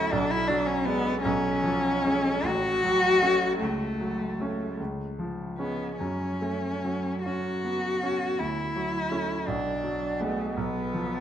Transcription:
Already playing: grand piano D2 F#3 A3 C#4, cello E4
0.12 grand piano B1, cello D4
0.31 cello E4
0.47 grand piano F#3, cello D4
0.66 cello C#4
0.85 grand piano G#3 D4, cello B3
1.22 grand piano B1, cello C#4
1.63 grand piano F3
2.04 grand piano G#3 C#4
2.44 grand piano A1, cello F#4
2.83 grand piano F#3
3.22 grand piano A3 C#4
3.60 grand piano C#2, cello A3
4.00 grand piano F#3
4.40 grand piano A3 C#4
4.80 grand piano C#2
5.19 grand piano F3
5.58 grand piano G#3 C#4, cello B3
5.97 grand piano F#2, cello C#4
6.41 grand piano A3
6.84 grand piano F#3
7.24 grand piano C#4, cello F#4
7.65 grand piano B3
8.03 grand piano C#4
8.39 grand piano D2, cello E4
8.76 grand piano F#3
9.11 grand piano A3 C#4
9.48 grand piano B1, cello D4
9.83 grand piano F#3
10.20 grand piano G#3 B3, cello A3
10.56 grand piano B1, cello B3
10.94 grand piano F3

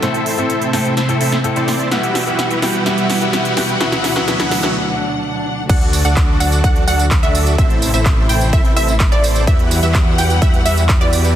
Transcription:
Already playing: string section A4, riser
0.02 grand piano A2 A3 C4 E4 A4, string section C3 A3 E4, supersaw synth C4 E4 A4 C5 E5, snare, closed hi-hat
0.14 closed hi-hat
0.26 open hi-hat
0.37 grand piano A2 A3 C4 E4 A4, supersaw synth C4 E4 A4 C5 E5, closed hi-hat
0.50 closed hi-hat
0.62 closed hi-hat
0.73 grand piano A2 A3 C4 E4 A4, supersaw synth C4 E4 A4 C5 G5, snare, open hi-hat
0.85 closed hi-hat
0.97 supersaw synth C4 E4 A4 C5 E5, snare, closed hi-hat
1.08 grand piano A2 A3 C4 E4 A4, closed hi-hat
1.21 supersaw synth C4 E4 A4 C5 E5, open hi-hat
1.32 snare
1.44 grand piano A2 A3 C4 E4 A4, closed hi-hat
1.56 supersaw synth C4 E4 A4 C5 D5, closed hi-hat
1.68 snare, open hi-hat
1.80 closed hi-hat
1.91 string section B2 G3 F#5, grand piano G3 B3 E4 F#5, supersaw synth E4 F#4 G4 B4 E5, snare, closed hi-hat
2.03 closed hi-hat
2.15 snare, open hi-hat
2.26 grand piano G3 B3 E4 F#5, supersaw synth E4 F#4 G4 B4 E5, closed hi-hat
2.39 snare, closed hi-hat
2.51 closed hi-hat
2.62 grand piano G3 B3 E4 F#4, supersaw synth E4 F#4 G4 B4 G5, snare, open hi-hat
2.74 closed hi-hat
2.85 grand piano G3 B3 E4 F#5, supersaw synth E4 F#4 G4 B4 E5, snare, closed hi-hat
2.98 closed hi-hat
3.10 snare, open hi-hat
3.21 grand piano G3 B3 E4 F#5, supersaw synth E4 F#4 G4 B4 E5, closed hi-hat
3.33 snare, closed hi-hat
3.45 closed hi-hat
3.56 grand piano G3 B3 E4 F#4, supersaw synth E4 F#4 G4 B4 G5, snare, open hi-hat
3.69 closed hi-hat
3.80 string section D2 F#3 D4, grand piano F#3 B3 E4 F#4, supersaw synth E4 F#4 B4 E5, snare, closed hi-hat
3.92 snare, closed hi-hat
4.04 snare, open hi-hat
4.15 grand piano F#3 B3 E4 F#4, supersaw synth E4 F#4 B4 E5, snare
4.27 grand piano F#3 B3 E4 F#4, supersaw synth E4 F#4 B4 E5, snare, closed hi-hat
4.40 snare, closed hi-hat
4.51 snare, open hi-hat
4.63 grand piano F#3 B3 E4 F#4, supersaw synth E4 F#4 B4 E5, snare, closed hi-hat
4.75 swell
5.69 detuned saw bass D2, string section D3 F#3 A3 F#4, supersaw synth D4 F#4 A4 D5 F#5, synth pluck F#5, kick, closed hi-hat, crash, tambourine
5.81 closed hi-hat
5.93 open hi-hat, tambourine
6.05 detuned saw bass D2, supersaw synth D4 F#4 A4 D5 F#5, synth pluck F#5, closed hi-hat, tambourine
6.16 kick, clap, closed hi-hat, tambourine
6.40 detuned saw bass D2, supersaw synth D4 F#4 A4 D5 F#5, synth pluck F#5, open hi-hat, tambourine
6.52 closed hi-hat, tambourine
6.64 detuned saw bass D2, supersaw synth D4 F#4 A4 D5 F#5, synth pluck F#5, kick, closed hi-hat, tambourine
6.76 closed hi-hat
6.88 detuned saw bass D2, supersaw synth D4 F#4 A4 D5 F#5, synth pluck F#5, open hi-hat, tambourine
6.99 closed hi-hat, tambourine
7.11 kick, clap, closed hi-hat, tambourine
7.23 detuned saw bass D2, supersaw synth D4 F#4 A4 D5 E5, synth pluck E5, closed hi-hat
7.35 open hi-hat, tambourine
7.47 closed hi-hat, tambourine
7.58 detuned saw bass A1, string section C3 E3 E4, supersaw synth C4 E4 A4 C5 E5, synth pluck E5, kick, closed hi-hat, tambourine
7.70 closed hi-hat
7.82 open hi-hat, tambourine
7.94 detuned saw bass A1, supersaw synth C4 E4 A4 C5 E5, synth pluck E5, closed hi-hat, tambourine
8.05 kick, clap, closed hi-hat, tambourine
8.29 detuned saw bass A1, supersaw synth C4 E4 A4 C5 G5, synth pluck G5, open hi-hat, tambourine
8.41 closed hi-hat, tambourine
8.53 detuned saw bass A1, supersaw synth C4 E4 A4 C5 E5, synth pluck E5, kick, closed hi-hat, tambourine
8.65 closed hi-hat
8.76 detuned saw bass A1, supersaw synth C4 E4 A4 C5 E5, synth pluck E5, open hi-hat, tambourine
8.88 closed hi-hat, tambourine
9.00 kick, clap, closed hi-hat, tambourine
9.12 detuned saw bass A1, supersaw synth C4 E4 A4 C5 D5, synth pluck D5, closed hi-hat
9.24 open hi-hat, tambourine
9.36 closed hi-hat, tambourine
9.47 detuned saw bass E2, string section E3 G3 B3 F#5, supersaw synth E4 F#4 G4 B4 E5, synth pluck E5, kick, closed hi-hat, tambourine
9.59 closed hi-hat
9.71 open hi-hat, tambourine
9.83 detuned saw bass E2, supersaw synth E4 F#4 G4 B4 E5, synth pluck E5, closed hi-hat, tambourine
9.94 kick, clap, closed hi-hat, tambourine
10.18 detuned saw bass E2, supersaw synth E4 F#4 G4 B4 G5, synth pluck G5, open hi-hat, tambourine
10.30 closed hi-hat, tambourine
10.42 detuned saw bass E2, supersaw synth E4 F#4 G4 B4 E5, synth pluck E5, kick, closed hi-hat, tambourine
10.54 closed hi-hat
10.65 detuned saw bass E2, supersaw synth E4 F#4 G4 B4 E5, synth pluck E5, open hi-hat, tambourine
10.77 closed hi-hat, tambourine
10.89 kick, clap, closed hi-hat, tambourine
11.01 detuned saw bass E2, supersaw synth E4 F#4 G4 B4 D5, synth pluck D5, closed hi-hat
11.13 open hi-hat, tambourine
11.25 closed hi-hat, tambourine

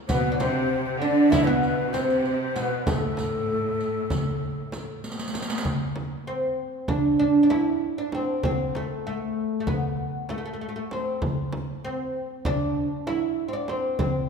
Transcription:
0.08 cello section B2, oud B3, ney C5, riq, darbuka dum, frame drum
0.12 ney B4
0.32 oud D4
0.39 cello section C3, oud C4, ney C5 D5, riq, darbuka tek, frame drum
0.85 ney C5
1.00 cello section D3, oud D4, ney D5, riq
1.31 cello section E3, oud E4, ney E5, riq, darbuka dum, frame drum
1.46 cello section B2, oud B3, ney B4
1.63 riq
1.93 cello section C3, oud C4, ney C5, riq, darbuka tek, frame drum
2.09 riq, darbuka ka
2.24 riq, darbuka ka
2.55 cello section B2, oud B3, ney B4, riq, darbuka tek, frame drum
2.86 cello section A2, oud A3, ney A4, riq, darbuka dum, frame drum
3.17 riq, darbuka tek, frame drum
3.49 darbuka ka
3.80 riq, darbuka ka
4.10 riq, frame drum, darbuka dum
4.72 riq, darbuka tek, frame drum
4.88 darbuka ka
5.04 riq, darbuka ka
5.12 riq
5.19 riq
5.28 riq
5.34 riq, darbuka tek, frame drum
5.42 riq
5.50 riq
5.58 riq
5.65 darbuka dum, frame drum
5.96 darbuka tek, frame drum
6.27 oud C4, darbuka ka
6.88 oud D4, frame drum, darbuka dum
7.19 oud D4, darbuka ka
7.43 oud D4
7.50 oud E4, darbuka tek, frame drum
7.67 darbuka ka
7.98 oud D4
8.12 oud C4, darbuka tek, frame drum
8.43 oud C4, frame drum, darbuka dum
8.75 oud A3, darbuka tek, frame drum
9.06 oud A3, darbuka ka
9.60 oud A3
9.67 oud B3, darbuka dum, frame drum
9.98 darbuka ka
10.29 oud A3, darbuka tek, frame drum
10.38 oud A3
10.45 oud A3, darbuka ka
10.53 oud A3
10.61 oud A3
10.69 oud A3
10.76 oud A3
10.91 oud C4, darbuka tek, frame drum
11.22 frame drum, darbuka dum
11.53 darbuka tek, frame drum
11.84 oud C4, darbuka ka
12.45 oud D4, frame drum, darbuka dum
12.77 darbuka ka
13.07 oud E4, darbuka tek, frame drum
13.23 darbuka ka
13.48 oud C4
13.53 oud D4
13.68 oud C4, darbuka tek, frame drum
13.99 oud C4, frame drum, darbuka dum

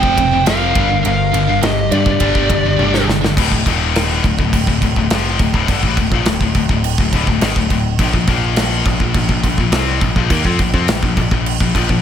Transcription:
Already playing: picked electric bass F1, distorted electric guitar F2 C3 F3, lead electric guitar C5 G5
0.03 kick
0.18 picked electric bass F1, distorted electric guitar F2 C3, kick, ride
0.33 distorted electric guitar F2 C3
0.46 picked electric bass F1, distorted electric guitar F2 C3 F3, lead electric guitar A#4 F5, snare, ride
0.75 picked electric bass G1, distorted electric guitar G2 D3 G3, kick, ride
0.91 distorted electric guitar G2 D3
1.05 picked electric bass G1, distorted electric guitar G2 D3, lead electric guitar A#4 F5, ride
1.33 picked electric bass G1, distorted electric guitar G2 D3, ride
1.49 distorted electric guitar G2 D3
1.62 picked electric bass G1, distorted electric guitar G2 D3, lead electric guitar G4 D#5, snare, ride
1.92 picked electric bass G2, distorted electric guitar G2 D3, lead electric guitar G4 D5, ride
2.06 distorted electric guitar G2 D3, kick
2.20 picked electric bass G1, distorted electric guitar G2 D3 G3, kick, ride
2.35 kick
2.50 picked electric bass G1, distorted electric guitar G2 D3, kick, ride
2.66 distorted electric guitar G2 D3
2.79 picked electric bass G1, distorted electric guitar G2 D3 G3, high tom
2.94 snare
3.07 picked electric bass G1, distorted electric guitar G2 D3, snare
3.24 distorted electric guitar G2 D3, snare
3.37 picked electric bass D1, distorted electric guitar D2 A2, kick, crash
3.52 picked electric bass D1, distorted electric guitar D2 A2, kick
3.66 picked electric bass D#1, distorted electric guitar D#2 A#2 D#3, kick, crash
3.96 snare, crash
4.24 picked electric bass D1, distorted electric guitar D2 A2, kick, crash
4.38 picked electric bass D1, distorted electric guitar D2 A2, kick
4.53 picked electric bass D1, distorted electric guitar D2 A2, kick, crash
4.67 picked electric bass D1, distorted electric guitar D2 A2, kick
4.82 picked electric bass D1, distorted electric guitar D2 A2, kick, crash
4.96 picked electric bass D1, distorted electric guitar D2 A2, kick
5.10 picked electric bass F1, distorted electric guitar F2 C3 F3, snare, crash
5.39 picked electric bass D1, distorted electric guitar D2 A2, kick, crash
5.54 picked electric bass D1, distorted electric guitar D2 A2, kick
5.68 picked electric bass G1, distorted electric guitar G2 D3, kick, crash
5.83 picked electric bass A1, distorted electric guitar A2 E3, kick
5.97 picked electric bass D1, distorted electric guitar D2 A2, kick, crash
6.12 picked electric bass A#1, distorted electric guitar A#2 F3, kick
6.25 picked electric bass D1, distorted electric guitar D2 A2, snare, crash
6.41 picked electric bass D1, distorted electric guitar D2 A2, kick
6.55 picked electric bass D1, distorted electric guitar D2 A2, kick, crash
6.69 picked electric bass D1, distorted electric guitar D2 A2, kick
6.84 crash
6.98 picked electric bass D1, distorted electric guitar D2 A2, kick
7.13 picked electric bass D1, distorted electric guitar D2 A2, kick, crash
7.27 picked electric bass D1, distorted electric guitar D2 A2, kick
7.41 picked electric bass G#1, distorted electric guitar G#2 D#3, snare, crash
7.56 picked electric bass D1, distorted electric guitar D2 A2, kick
7.70 picked electric bass D1, distorted electric guitar D2 A2, kick, crash
7.99 picked electric bass A#1, distorted electric guitar A#2 F3, kick, crash
8.13 picked electric bass A#1, distorted electric guitar A#2 F3, kick
8.27 picked electric bass A#1, distorted electric guitar A#2 F3 A#3, kick, crash
8.56 snare, crash
8.85 picked electric bass A#1, distorted electric guitar A#2 F3, kick, crash
9.00 picked electric bass A#1, distorted electric guitar A#2 F3, kick
9.14 picked electric bass A#1, distorted electric guitar A#2 F3, kick, crash
9.29 picked electric bass A#1, distorted electric guitar A#2 F3, kick
9.44 picked electric bass A#1, distorted electric guitar A#2 F3, kick, crash
9.58 picked electric bass A#1, distorted electric guitar A#2 F3, kick
9.72 picked electric bass C2, distorted electric guitar C3 G3 C4, snare, crash
10.01 picked electric bass A#1, distorted electric guitar A#2 F3, kick, crash
10.16 picked electric bass A#1, distorted electric guitar A#2 F3, kick
10.30 picked electric bass D#2, distorted electric guitar D#3 A#3, kick, crash
10.45 picked electric bass F2, distorted electric guitar F3 C4, kick
10.59 picked electric bass A#1, distorted electric guitar A#2 F3, kick, crash
10.74 picked electric bass F2, distorted electric guitar F3 C4, kick
10.88 picked electric bass A#1, distorted electric guitar A#2 F3, snare, crash
11.03 picked electric bass A#1, distorted electric guitar A#2 F3, kick
11.17 picked electric bass A#1, distorted electric guitar A#2 F3, kick, crash
11.31 picked electric bass A#1, distorted electric guitar A#2 F3, kick
11.46 crash
11.60 picked electric bass A#1, distorted electric guitar A#2 F3, kick
11.75 picked electric bass A#1, distorted electric guitar A#2 F3, kick, crash
11.89 picked electric bass A#1, distorted electric guitar A#2 F3, kick

